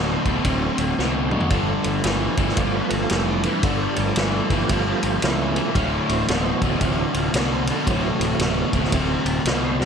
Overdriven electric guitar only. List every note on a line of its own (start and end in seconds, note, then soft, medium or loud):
0.00 0.22 D2 medium
0.00 0.22 B2 medium
0.25 0.43 D2 medium
0.25 0.43 B2 medium
0.46 0.95 D2 medium
0.46 0.95 C3 medium
0.98 1.29 D2 medium
0.98 1.29 B2 medium
1.31 1.49 D2 medium
1.31 1.49 B2 medium
1.51 2.00 G2 medium
1.51 2.01 D3 medium
2.03 2.34 G2 medium
2.03 2.35 E3 medium
2.37 2.55 G2 medium
2.37 2.55 E3 medium
2.57 3.07 G2 medium
2.57 3.07 F3 medium
3.10 3.41 G2 medium
3.10 3.41 E3 medium
3.44 3.62 G2 medium
3.44 3.62 E3 medium
3.64 4.13 G2 medium
3.64 4.13 D3 loud
4.17 4.47 G2 medium
4.17 4.47 E3 medium
4.51 4.68 G2 medium
4.51 4.68 E3 medium
4.71 5.19 G2 medium
4.71 5.20 F3 medium
5.23 5.53 G2 medium
5.23 5.53 E3 medium
5.56 5.73 G2 medium
5.56 5.74 E3 medium
5.76 6.25 D2 medium
5.76 6.25 A2 medium
6.29 6.59 D2 medium
6.29 6.59 B2 medium
6.63 6.80 D2 medium
6.63 6.80 B2 medium
6.81 7.30 D2 medium
6.81 7.31 C3 medium
7.34 7.64 D2 medium
7.34 7.65 B2 medium
7.69 7.86 D2 medium
7.69 7.86 B2 medium
7.88 8.37 D2 medium
7.88 8.37 A2 medium
8.41 8.70 D2 medium
8.41 8.71 B2 medium
8.74 8.91 D2 medium
8.74 8.91 B2 medium
8.93 9.42 D2 medium
8.93 9.42 C3 medium
9.46 9.76 D2 medium
9.46 9.76 B2 medium
9.80 9.85 D2 medium
9.80 9.85 B2 medium